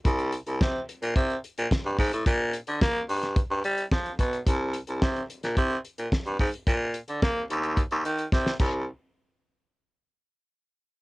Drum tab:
CC |----------------|----------------|----------------|--------------x-|
HH |xxxx--xxxxxx--ox|x-xx--oxx-xx-xxx|x-xx-xxxx-xx-xox|x-xx--xxxxxx----|
SD |----o-------o---|----o--o----o---|----o--o----o---|----o-------oo--|
BD |o---o---o---o-o-|o---o---o---o-o-|o---o---o---o-o-|o---o---o---o-o-|

CC |----------------|
HH |----------------|
SD |----------------|
BD |----------------|